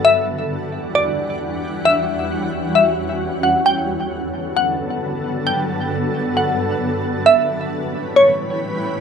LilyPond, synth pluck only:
\new Staff \with { instrumentName = "Synth pluck" } { \time 4/4 \key g \lydian \tempo 4 = 133 e''2 d''2 | e''2 e''4. fis''8 | g''2 fis''2 | g''2 fis''2 |
e''2 cis''2 | }